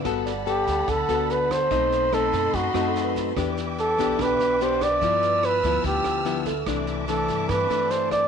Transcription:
<<
  \new Staff \with { instrumentName = "String section" } { \time 4/4 \key g \major \tempo 4 = 145 << { <fis'' a'' b''>1 | <dis'' a'' c'''>1 | <e'' g'' d'''>1 | <a'' e''' f'''>1 |
<e'' a'' d'''>1 | } \\ { a'1 | b''1 | b'1~ | b'1 |
c'1 | } >> }
  \new Staff \with { instrumentName = "Flugelhorn" } { \time 4/4 \key g \major r4 g'4 a'4 b'8 c''8~ | c''4 a'4 fis'4. r8 | r4 a'4 b'4 c''8 d''8~ | d''4 b'4 g'4. r8 |
r4 a'4 b'4 c''8 d''8 | }
  \new Staff \with { instrumentName = "Tine electric piano" } { \time 4/4 \key g \major b'16 r16 d''4~ d''16 r2 r16 | r2 r8 fis'16 a'16 b'4~ | b'16 r4. r16 d'4~ d'16 r8. | r2. r8 a'8~ |
a'8 r2. r8 | }
  \new Staff \with { instrumentName = "Nylon-string guitar" } { \time 4/4 \key g \major << { <b fis' a'>8 r8 <b a'>4. <b fis' a'>4. | <a c' dis'>4 <a c' dis'>4. <a c' dis'>4. | <b d' g'>4. <b d' g'>4. <b d' g'>8 r8 | <f b e'>4. <f b e'>4. <f b e'>8 r8 |
<e a d'>4 <e a d'>4. <e a d'>4. | } \\ { g2 d2 | b,2 fis2 | e2 b,2 | g,2 d2 |
c2 g,2 | } >> }
  \new Staff \with { instrumentName = "Upright bass" } { \clef bass \time 4/4 \key g \major g,,4. d,8 d,8 d,4. | b,,4. fis,8 fis,8 fis,4. | e,4. b,,8 b,,8 b,,4. | g,4. d,8 d,8 d,4. |
c,4. g,8 g,8 g,4. | }
  \new DrumStaff \with { instrumentName = "Drums" } \drummode { \time 4/4 <bd ss sn>8 sn8 sn8 <bd sn>8 <bd ss sn>8 sn8 sn8 <bd ss sn>8 | <bd sn>8 sn8 <ss sn>8 <bd sn>8 <bd sn>8 <ss sn>8 sn8 <bd sn>8 | <bd ss sn>8 sn8 sn8 <bd sn>8 <bd ss sn>8 sn8 sn8 <bd ss sn>8 | <bd sn>8 sn8 <ss sn>8 <bd sn>8 <bd sn>8 <ss sn>8 sn8 <bd sn>8 |
<bd ss sn>8 sn8 sn8 <bd sn>8 <bd ss sn>8 sn8 sn8 <bd ss sn>8 | }
>>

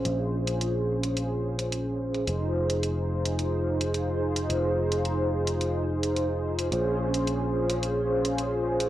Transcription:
<<
  \new Staff \with { instrumentName = "Analog polysynth" } { \time 4/4 \key bes \minor \tempo 4 = 108 <des' f' aes' c''>1 | <ees' f' aes' c''>1~ | <ees' f' aes' c''>1 | <des' f' aes' c''>1 | }
  \new Staff \with { instrumentName = "Picked electric bass" } { \clef bass \time 4/4 \key bes \minor bes,,1 | f,,1 | f,,1 | bes,,1 | }
  \new DrumStaff \with { instrumentName = "Drums" } \drummode { \time 4/4 hh8. hh16 hh8. hh16 hh8. hh16 hh8. hh16 | hh8. hh16 hh8. hh16 hh8. hh16 hh8. hh16 | hh8. hh16 hh8. hh16 hh8. hh16 hh8. hh16 | hh8. hh16 hh8. hh16 hh8. hh16 hh8. hh16 | }
>>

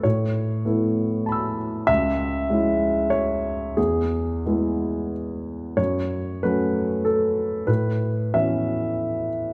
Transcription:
<<
  \new Staff \with { instrumentName = "Grand piano" } { \time 3/4 \key a \major \tempo 4 = 96 << { r2 <a'' b'' e'''>4 | r2. | r2. | r2. |
r2. | } \\ { cis''2~ cis''8 r8 | e''2 cis''4 | gis'2 r4 | cis''4 b'4 a'4 |
b'4 e''4. r8 | } >> }
  \new Staff \with { instrumentName = "Grand piano" } { \time 3/4 \key a \major a,4 <a b e'>2 | cis,4 <gis cis' e'>2 | e,4 <gis b e'>2 | fis,4 <fis a cis'>2 |
a,4 <e b cis'>2 | }
>>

